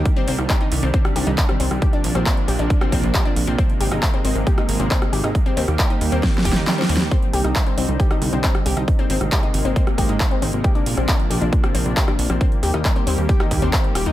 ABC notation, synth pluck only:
X:1
M:4/4
L:1/16
Q:1/4=136
K:Cm
V:1 name="Synth pluck"
z C C z G E z C C z G E z C C z | G D z C C z G D z C C z G D z C | C z G E z C C z G E z C C z G E | z C C z G E z C C z G E z C C z |
C z G E z C C z G E z C C z G E | z C C z G E z C C z G E z C C z | G D z C C z G D z C C z G D z C | C z G E z C C z G E z C C z G E |]